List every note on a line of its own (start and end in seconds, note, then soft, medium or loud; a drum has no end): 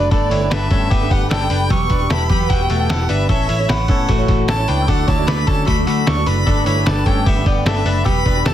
0.00 1.68 D3 medium
0.00 0.10 F#3 medium
0.00 1.67 A3 medium
0.00 0.11 D4 medium
0.00 0.11 D4 soft
0.00 0.12 F#4 soft
0.00 0.11 B4 medium
0.00 0.11 D5 loud
0.00 0.11 D5 medium
0.00 0.16 D6 loud
0.11 0.28 G1 loud
0.11 3.26 G3 medium
0.11 0.41 A3 medium
0.11 4.84 B3 medium
0.11 0.31 D4 medium
0.11 0.42 D4 medium
0.11 1.69 G4 medium
0.11 0.30 A4 loud
0.11 0.41 A4 medium
0.11 0.40 B4 medium
0.11 0.52 D5 loud
0.11 0.49 B5 loud
0.11 kick loud
0.11 open hi-hat loud
0.31 0.48 G1 loud
0.31 0.51 E4 medium
0.31 0.50 C#5 medium
0.31 open hi-hat medium
0.41 0.70 D4 medium
0.41 0.71 A4 medium
0.41 0.71 B4 medium
0.50 0.68 G1 loud
0.50 0.71 D4 medium
0.50 0.70 B4 medium
0.50 1.12 E5 medium
0.50 1.66 A5 medium
0.50 snare loud
0.50 open hi-hat loud
0.71 0.88 G2 loud
0.71 1.01 A3 medium
0.71 0.91 C#4 medium
0.71 1.01 D4 medium
0.71 0.90 A4 medium
0.71 1.01 A4 medium
0.71 1.00 B4 medium
0.71 kick loud
0.71 open hi-hat medium
0.91 1.07 G1 loud
0.91 1.10 B3 medium
0.91 1.09 G4 medium
0.91 kick loud
0.91 open hi-hat loud
1.01 1.42 D4 soft
1.01 1.41 A4 medium
1.01 1.40 B4 medium
1.10 1.27 G1 medium
1.10 1.30 B3 medium
1.10 1.30 G4 medium
1.10 1.30 F#5 medium
1.10 kick loud
1.10 open hi-hat medium
1.30 1.47 G1 loud
1.30 1.50 D4 medium
1.30 1.50 A4 medium
1.30 1.71 G5 loud
1.30 snare loud
1.30 open hi-hat medium
1.41 1.72 D4 soft
1.41 1.71 A4 soft
1.41 1.70 B4 medium
1.50 1.67 F#1 medium
1.50 1.71 D4 medium
1.50 1.70 B4 medium
1.50 open hi-hat medium
1.70 1.87 E1 loud
1.70 3.28 E3 medium
1.70 2.00 F#3 medium
1.70 1.91 B3 medium
1.70 2.01 B3 medium
1.70 1.90 G4 loud
1.70 3.28 G4 medium
1.70 2.00 G4 medium
1.70 1.99 B4 medium
1.70 2.12 C#6 loud
1.70 3.34 E6 loud
1.70 kick loud
1.70 open hi-hat loud
1.90 2.07 E1 loud
1.90 2.10 D4 medium
1.90 2.10 B4 medium
1.90 kick loud
1.90 open hi-hat medium
2.00 2.29 B3 medium
2.00 2.30 G4 medium
2.00 2.30 B4 medium
2.10 2.27 E1 loud
2.10 2.30 E4 medium
2.10 2.29 A4 medium
2.10 2.51 B5 loud
2.10 snare loud
2.10 open hi-hat medium
2.29 2.46 E2 loud
2.29 2.60 F#3 medium
2.29 2.60 B3 medium
2.29 2.49 B3 medium
2.29 2.49 G4 medium
2.29 2.59 G4 medium
2.29 2.58 B4 medium
2.29 kick loud
2.29 open hi-hat medium
2.50 2.66 E1 loud
2.50 2.70 B3 medium
2.50 2.69 F#4 medium
2.50 2.91 G5 loud
2.50 kick loud
2.50 open hi-hat loud
2.59 3.00 B3 soft
2.59 3.00 G4 soft
2.59 2.98 B4 medium
2.70 2.87 E1 medium
2.70 2.90 A3 medium
2.70 2.89 F#4 medium
2.70 open hi-hat medium
2.90 3.06 E1 loud
2.90 3.10 E4 medium
2.90 3.09 A4 medium
2.90 3.11 F#5 medium
2.90 snare loud
2.90 open hi-hat medium
2.99 3.28 B3 soft
2.99 3.29 G4 soft
2.99 3.29 B4 medium
3.09 3.26 G1 loud
3.09 3.29 D4 medium
3.09 3.29 B4 medium
3.09 3.29 E5 medium
3.09 open hi-hat medium
3.29 3.46 A1 loud
3.29 4.87 C#3 medium
3.29 4.87 E3 medium
3.29 8.02 A3 medium
3.29 3.59 B3 medium
3.29 3.49 C#4 medium
3.29 6.44 E4 medium
3.29 3.59 E4 medium
3.29 3.49 A4 loud
3.29 3.59 A4 medium
3.29 3.58 C#5 medium
3.29 3.71 E5 medium
3.29 3.70 C#6 loud
3.29 kick loud
3.29 open hi-hat loud
3.49 3.66 A1 loud
3.49 3.68 E4 medium
3.49 3.68 C#5 medium
3.49 open hi-hat medium
3.59 3.88 E4 medium
3.59 3.89 A4 medium
3.59 3.89 C#5 medium
3.69 3.90 A1 loud
3.69 3.89 E4 medium
3.69 3.89 B4 medium
3.69 4.29 F#5 medium
3.69 4.06 B5 medium
3.69 snare loud
3.69 open hi-hat medium
3.88 4.05 A2 loud
3.88 4.19 B3 medium
3.88 4.09 C#4 medium
3.88 4.19 E4 medium
3.88 4.09 A4 medium
3.88 4.18 A4 medium
3.88 4.17 C#5 medium
3.88 kick loud
3.88 open hi-hat medium
4.09 4.25 A1 loud
4.09 4.28 A3 medium
4.09 4.28 F#4 medium
4.09 4.65 C#6 loud
4.09 kick loud
4.09 open hi-hat loud
4.18 4.59 E4 medium
4.18 4.58 A4 medium
4.18 4.57 C#5 medium
4.28 4.45 A1 loud
4.28 4.49 A3 medium
4.28 4.49 F#4 medium
4.28 kick loud
4.28 snare soft
4.28 open hi-hat medium
4.48 4.65 A1 loud
4.48 4.69 C#4 medium
4.48 4.68 A4 medium
4.48 4.70 A5 loud
4.48 snare loud
4.48 open hi-hat medium
4.58 4.88 E4 medium
4.58 4.88 A4 soft
4.58 4.88 C#5 medium
4.68 4.85 C#2 medium
4.68 4.88 D4 medium
4.68 4.88 B4 medium
4.68 4.90 G5 loud
4.68 open hi-hat medium
4.82 4.89 E6 medium
4.88 5.05 D2 loud
4.88 8.03 D3 medium
4.88 6.46 E3 medium
4.88 6.46 F#3 medium
4.88 5.18 A3 medium
4.88 5.18 D4 medium
4.88 5.08 D4 medium
4.88 5.17 F#4 medium
4.88 5.07 A4 loud
4.88 5.16 D5 medium
4.88 5.09 F#5 loud
4.88 5.25 D6 loud
4.88 kick loud
4.88 open hi-hat loud
5.08 5.24 D2 loud
5.08 5.28 E4 medium
5.08 5.27 C#5 medium
5.08 5.29 A5 medium
5.08 kick loud
5.08 open hi-hat medium
5.17 5.46 A3 soft
5.17 5.47 D4 medium
5.17 5.47 F#4 medium
5.17 5.47 D5 medium
5.27 5.44 D2 loud
5.27 5.47 D4 medium
5.27 5.47 B4 medium
5.27 5.49 B5 medium
5.27 5.69 D6 loud
5.27 snare loud
5.27 open hi-hat loud
5.47 5.64 D3 loud
5.47 5.77 A3 medium
5.47 5.68 C#4 medium
5.47 5.78 D4 medium
5.47 5.77 F#4 medium
5.47 5.67 A4 medium
5.47 5.76 D5 medium
5.47 5.66 A5 loud
5.47 kick medium
5.47 open hi-hat medium
5.66 5.84 D2 loud
5.66 5.86 A3 medium
5.66 5.85 F#4 medium
5.66 5.86 B5 loud
5.66 6.49 E6 medium
5.66 kick loud
5.66 open hi-hat loud
5.77 6.17 A3 soft
5.77 6.17 D4 soft
5.77 6.16 F#4 soft
5.77 6.15 D5 medium
5.87 6.04 D2 medium
5.87 6.07 A3 medium
5.87 6.07 F#4 medium
5.87 6.08 B5 medium
5.87 open hi-hat medium
6.06 6.23 D2 loud
6.06 6.26 D4 medium
6.06 6.26 A4 medium
6.06 6.29 C#6 loud
6.06 snare loud
6.06 open hi-hat medium
6.16 6.45 A3 soft
6.16 6.46 D4 medium
6.16 6.47 F#4 soft
6.16 6.47 D5 medium
6.26 6.43 F#1 loud
6.26 6.46 D4 medium
6.26 6.46 B4 medium
6.26 6.65 B5 loud
6.26 open hi-hat medium
6.46 6.63 G1 loud
6.46 8.04 G3 medium
6.46 6.77 A3 medium
6.46 8.54 B3 medium
6.46 6.77 D4 medium
6.46 6.67 D4 medium
6.46 8.04 G4 medium
6.46 6.66 A4 loud
6.46 6.76 A4 medium
6.46 6.75 B4 medium
6.46 8.11 D6 medium
6.46 kick loud
6.46 open hi-hat loud
6.66 6.83 G1 loud
6.66 6.87 E4 medium
6.66 6.86 C#5 medium
6.66 6.88 B5 medium
6.66 open hi-hat medium
6.77 7.06 D4 soft
6.77 7.06 A4 medium
6.77 7.06 B4 medium
6.86 7.03 G1 loud
6.86 7.07 D4 medium
6.86 7.06 B4 medium
6.86 7.08 A5 medium
6.86 snare loud
6.86 open hi-hat medium
7.06 7.23 G2 loud
7.06 7.36 A3 medium
7.06 7.27 C#4 medium
7.06 7.37 D4 medium
7.06 7.26 A4 medium
7.06 7.36 A4 medium
7.06 7.35 B4 medium
7.06 7.28 G5 loud
7.06 kick loud
7.06 open hi-hat medium
7.26 7.43 G1 loud
7.26 7.46 B3 medium
7.26 7.46 G4 medium
7.26 7.48 E5 medium
7.26 kick loud
7.26 open hi-hat loud
7.36 7.76 D4 soft
7.36 7.75 A4 medium
7.36 7.75 B4 medium
7.46 7.62 G1 loud
7.46 7.66 B3 medium
7.46 7.66 G4 medium
7.46 7.68 D5 medium
7.46 kick loud
7.46 open hi-hat medium
7.66 7.82 G1 loud
7.66 7.85 D4 medium
7.66 7.86 A4 medium
7.66 8.05 E5 medium
7.66 snare loud
7.66 open hi-hat medium
7.75 8.06 D4 soft
7.75 8.06 A4 medium
7.75 8.05 B4 medium
7.85 8.02 F#1 medium
7.85 8.06 D4 medium
7.85 8.05 B4 medium
7.85 open hi-hat medium
8.05 8.22 E1 loud
8.05 8.54 E3 medium
8.05 8.35 F#3 medium
8.05 8.54 G3 medium
8.05 8.35 B3 medium
8.05 8.26 B3 medium
8.05 8.25 G4 loud
8.05 8.54 G4 medium
8.05 8.35 G4 medium
8.05 8.34 B4 medium
8.05 8.47 B5 loud
8.05 8.54 E6 loud
8.05 kick loud
8.05 open hi-hat loud
8.26 8.42 E1 loud
8.26 8.46 D4 medium
8.26 8.45 B4 medium
8.26 kick loud
8.26 open hi-hat medium
8.35 8.54 B3 soft
8.35 8.54 G4 medium
8.35 8.54 B4 medium
8.45 8.54 E1 loud
8.45 8.54 E4 medium
8.45 8.54 A4 medium
8.45 8.54 A5 medium
8.45 snare loud
8.45 open hi-hat medium